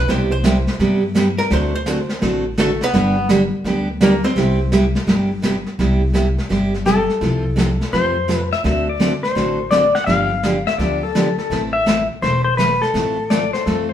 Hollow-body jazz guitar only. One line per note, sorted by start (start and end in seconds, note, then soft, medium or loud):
0.10 0.31 C5 medium
0.32 0.77 C5 medium
1.39 1.51 A#4 medium
1.53 1.74 C5 medium
1.75 2.20 C5 medium
2.60 2.82 A3 medium
2.60 2.81 A4 medium
2.84 3.28 B3 medium
2.84 3.27 B4 loud
4.03 4.24 A#3 medium
4.03 4.24 A#4 medium
4.24 4.69 C4 medium
4.24 4.69 C5 medium